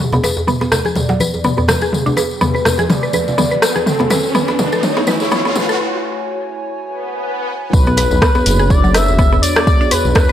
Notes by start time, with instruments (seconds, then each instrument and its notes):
0.00 analog synth pad B3 D4 F#4 D5 G#5, analog synth lead G#4, tambourine, riser
0.13 synth arpeggio sound B3, tambourine, djembe tone, low conga
0.23 synth arpeggio sound B4, tambourine, djembe slap, muted conga
0.37 tambourine, djembe tone
0.47 synth arpeggio sound B3, analog synth lead B4, mid tom, tambourine
0.61 synth arpeggio sound B3, tambourine, muted conga, djembe slap
0.72 cross-stick, tambourine, djembe tone, low conga
0.85 synth arpeggio sound G#4, tambourine, high conga
0.95 analog synth lead D5, mid tom, tambourine, muted conga, djembe tone
1.09 synth arpeggio sound F#3, tambourine, djembe slap
1.20 synth arpeggio sound B4, tambourine, high conga
1.34 analog synth lead D5, tambourine, djembe tone
1.44 synth arpeggio sound B3, mid tom, tambourine, muted conga, high conga
1.57 synth arpeggio sound B3, tambourine, djembe tone, djembe bass
1.68 analog synth lead B4, cross-stick, tambourine, high conga, low conga
1.81 synth arpeggio sound G#4, tambourine, muted conga
1.92 analog synth lead G#4, analog synth pad B4, mid tom, tambourine, djembe tone
2.06 synth arpeggio sound D4, tambourine, low conga
2.17 synth arpeggio sound B4, tambourine, djembe slap, muted conga, djembe tone
2.31 tambourine
2.41 synth arpeggio sound B3, analog synth lead B4, mid tom, tambourine, djembe bass
2.54 synth arpeggio sound B4, tambourine, muted conga, djembe tone
2.65 cross-stick, tambourine, djembe bass, low conga
2.78 synth arpeggio sound G#4, tambourine, djembe tone, high conga
2.89 analog synth lead D5, mid tom, tambourine, djembe slap, muted conga, high conga
3.03 synth arpeggio sound B4, tambourine
3.13 synth arpeggio sound B4, tambourine, high conga, djembe tone
3.27 analog synth lead D5, tambourine, low conga
3.38 synth arpeggio sound B3, mid tom, tambourine, muted conga, high conga, djembe tone
3.51 synth arpeggio sound B4, tambourine, high conga
3.62 analog synth lead B4, cross-stick, tambourine
3.75 synth arpeggio sound G#4, muted conga, djembe tone, high conga
3.86 analog synth pad A3 E4 C#5, analog synth lead A4, mid tom, tambourine
3.99 synth arpeggio sound B3, tambourine, djembe tone, low conga
4.10 synth arpeggio sound B4, mid tom, tambourine, muted conga, djembe slap
4.23 tambourine
4.29 analog synth lead C#5
4.34 synth arpeggio sound B3, analog synth lead B4, mid tom, tambourine, djembe tone
4.48 synth arpeggio sound B3, tambourine, djembe slap, muted conga
4.59 mid tom, tambourine, djembe tone, low conga
4.72 synth arpeggio sound A4, tambourine, high conga
4.83 analog synth lead C#5, mid tom, tambourine, muted conga
4.97 synth arpeggio sound B3, tambourine, djembe slap, djembe tone
5.07 synth arpeggio sound B4, mid tom, tambourine, high conga
5.20 analog synth lead C#5, tambourine, djembe tone
5.31 synth arpeggio sound B3, mid tom, tambourine, muted conga, high conga
5.45 synth arpeggio sound B3, tambourine, djembe bass
5.55 analog synth lead B4, mid tom, tambourine, djembe tone, high conga, low conga
5.69 synth arpeggio sound A4, tambourine, muted conga
6.77 swell
7.73 detuned saw bass B1, analog synth pad B3 D4 F#4 G#4 C#5, analog synth lead B4, kick, tambourine
7.87 synth arpeggio sound B3, tambourine, djembe tone
7.97 synth arpeggio sound B4, open hi-hat, tambourine, djembe slap
8.11 detuned saw bass B1, tambourine, djembe tone
8.22 synth arpeggio sound B3, kick, cross-stick, tambourine
8.35 synth arpeggio sound B3, tambourine, djembe slap
8.46 detuned saw bass F#1, open hi-hat, tambourine, djembe tone
8.59 synth arpeggio sound G#4, tambourine
8.70 analog synth lead D5, kick, tambourine, djembe tone
8.84 synth arpeggio sound F#3, tambourine
8.94 synth arpeggio sound B4, analog synth lead E5, cross-stick, open hi-hat, tambourine
9.08 tambourine, djembe tone
9.19 synth arpeggio sound B3, kick, tambourine
9.32 synth arpeggio sound B3, tambourine, djembe tone, djembe bass
9.42 analog synth lead D5, open hi-hat, tambourine
9.56 synth arpeggio sound G#4, cross-stick, tambourine, djembe slap
9.66 analog synth lead D5, kick, tambourine, djembe tone
9.81 synth arpeggio sound D4, tambourine
9.91 analog synth lead B4, synth arpeggio sound B4, open hi-hat, tambourine, djembe slap, djembe tone
10.05 detuned saw bass B1, tambourine
10.15 synth arpeggio sound B3, analog synth lead B4, kick, cross-stick, tambourine, djembe bass
10.29 djembe slap, djembe tone